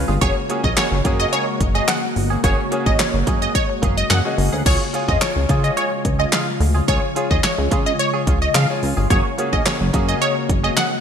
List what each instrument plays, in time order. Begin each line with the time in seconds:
Already playing: ambient pad C#3 F3 G#3 F4
0.08 analog synth bass G1, clean electric guitar C#4 F4 G#4
0.21 analog synth bass F#1, clean electric guitar A#3 C#4 G#4, grand piano A#3 C#4 F#4 G#4 C#5, ambient pad A#3 F#4, synth pluck C#5, kick, closed hi-hat
0.36 muted clean electric guitar stroke
0.49 clean electric guitar A#3 C#4 G#4, grand piano A#3 C#4 F#4 G#4 C#5, closed hi-hat
0.64 analog synth bass A#1, clean electric guitar A#3 C#4 G#4, synth pluck D#5, kick
0.77 grand piano A#3 C#4 F#4 G#4 C#5, synth pluck C#5, muted clean electric guitar stroke, snare, clap, closed hi-hat
0.92 analog synth bass F#1, muted clean electric guitar stroke
1.04 analog synth bass F#2, clean electric guitar A#3 C#4 G#4, grand piano A#3 C#4 F#4 G#4 A#4, kick, closed hi-hat
1.19 clean electric guitar A#3 C#4 G#4, synth pluck D#5, closed hi-hat
1.32 clean electric guitar A#3 C#4 G#4, synth pluck C#5, closed hi-hat
1.47 muted clean electric guitar stroke
1.60 analog synth bass F#1, muted clean electric guitar stroke, kick, closed hi-hat
1.75 clean electric guitar A#3 C#4 G#4, synth pluck D#5
1.88 clean electric guitar A#3 C#4 G#4, synth pluck F#5, snare, clap, closed hi-hat
2.16 analog synth bass G1, muted clean electric guitar stroke, open hi-hat
2.30 clean electric guitar A#3 C#4 G#4
2.43 analog synth bass F#1, clean electric guitar A#3 C#4 G#4, grand piano A#3 C#4 F#4 G#4 C#5, synth pluck C#5, kick, closed hi-hat
2.58 muted clean electric guitar stroke
2.71 clean electric guitar A#3 C#4 G#4, grand piano A#3 C#4 F#4 G#4 C#5, closed hi-hat
2.86 analog synth bass G#1, clean electric guitar A#3 C#4 G#4, synth pluck D#5, kick
2.99 synth pluck C#5, snare, clap, closed hi-hat
3.14 analog synth bass F#1, muted clean electric guitar stroke
3.27 analog synth bass F#2, clean electric guitar A#3 C#4 G#4, kick, closed hi-hat
3.41 clean electric guitar A#3 C#4 G#4, synth pluck D#5, closed hi-hat
3.55 synth pluck C#5, muted clean electric guitar stroke, kick, closed hi-hat
3.69 muted clean electric guitar stroke
3.82 analog synth bass F#1, clean electric guitar A#3 C#4 G#4, kick, closed hi-hat
3.97 synth pluck D#5, muted clean electric guitar stroke, closed hi-hat
4.10 analog synth bass F#2, clean electric guitar A#3 C#4 G#4, synth pluck F#5, snare, clap, closed hi-hat
4.25 grand piano A#3 C#4 F#4 G#4 D#5, muted clean electric guitar stroke
4.38 analog synth bass F#1, muted clean electric guitar stroke, open hi-hat
4.52 analog synth bass D2, clean electric guitar A#3 C#4 G#4
4.65 analog synth bass C#2, ambient pad C#3 F3 G#3 F4, clean electric guitar C#4 F4 G#4, grand piano F4 G#4 C#5, synth pluck C#5, kick, closed hi-hat, crash
4.80 muted clean electric guitar stroke
4.93 clean electric guitar C#4 F4 G#4, grand piano F4 G#4 C#5, closed hi-hat
5.08 analog synth bass F2, clean electric guitar C#4 F4 G#4, synth pluck D#5, kick
5.21 grand piano F4 G#4 C#5, synth pluck C#5, snare, clap, closed hi-hat
5.36 analog synth bass C#2, muted clean electric guitar stroke
5.49 analog synth bass C#3, clean electric guitar C#4 F4 G#4, grand piano F4 G#4 C#5, kick, closed hi-hat
5.63 clean electric guitar C#4 F4 G#4, synth pluck D#5, closed hi-hat
5.77 clean electric guitar C#4 F4 G#4, synth pluck C#5, closed hi-hat
5.91 muted clean electric guitar stroke
6.04 analog synth bass C#2, muted clean electric guitar stroke, kick, closed hi-hat
6.19 clean electric guitar C#4 F4 G#4, synth pluck D#5
6.32 clean electric guitar C#4 F4 G#4, synth pluck F5, snare, clap, closed hi-hat
6.47 muted clean electric guitar stroke
6.60 analog synth bass D2, muted clean electric guitar stroke, open hi-hat
6.75 clean electric guitar C#4 F4 G#4
6.88 analog synth bass C#2, clean electric guitar C#4 F4 G#4, grand piano F4 G#4 C#5, synth pluck C#5, kick, closed hi-hat
7.03 muted clean electric guitar stroke
7.15 clean electric guitar C#4 F4 G#4, grand piano F4 G#4 C#5, closed hi-hat
7.30 analog synth bass D#2, clean electric guitar C#4 F4 G#4, synth pluck D#5, kick
7.44 synth pluck C#5, snare, clap, closed hi-hat
7.58 analog synth bass C#2, muted clean electric guitar stroke
7.71 analog synth bass C#3, clean electric guitar C#4 F4 G#4, kick, closed hi-hat
7.86 clean electric guitar C#4 F4 G#4, synth pluck D#5, closed hi-hat
7.99 synth pluck C#5, muted clean electric guitar stroke, closed hi-hat
8.14 clean electric guitar C#4 F4 G#4
8.27 analog synth bass C#2, clean electric guitar C#4 F4 G#4, kick, closed hi-hat
8.42 synth pluck D#5
8.54 analog synth bass C#3, clean electric guitar C#4 F4 G#4, synth pluck F5, snare, clap, closed hi-hat
8.69 grand piano F4 G#4 C#5
8.82 analog synth bass C#2, muted clean electric guitar stroke, open hi-hat
8.97 analog synth bass G1, clean electric guitar C#4 F4 G#4
9.10 analog synth bass F#1, clean electric guitar A#3 C#4 G#4, grand piano A#3 C#4 F#4 G#4 C#5, ambient pad A#3 F#4, synth pluck C#5, kick, closed hi-hat
9.38 clean electric guitar A#3 C#4 G#4, grand piano A#3 C#4 F#4 G#4 C#5, closed hi-hat
9.52 analog synth bass A#1, clean electric guitar A#3 C#4 G#4, synth pluck D#5, kick
9.66 grand piano A#3 C#4 F#4 G#4 C#5, synth pluck C#5, snare, clap, closed hi-hat
9.80 analog synth bass F#1, muted clean electric guitar stroke
9.93 analog synth bass F#2, clean electric guitar A#3 C#4 G#4, grand piano A#3 C#4 F#4 G#4 C#5, kick, closed hi-hat
10.08 clean electric guitar A#3 C#4 G#4, synth pluck D#5, closed hi-hat
10.21 clean electric guitar A#3 C#4 G#4, synth pluck C#5, closed hi-hat
10.36 muted clean electric guitar stroke
10.49 analog synth bass F#1, muted clean electric guitar stroke, kick, closed hi-hat
10.64 clean electric guitar A#3 C#4 G#4, synth pluck D#5
10.77 clean electric guitar A#3 C#4 G#4, synth pluck F#5, snare, clap, closed hi-hat
10.92 muted clean electric guitar stroke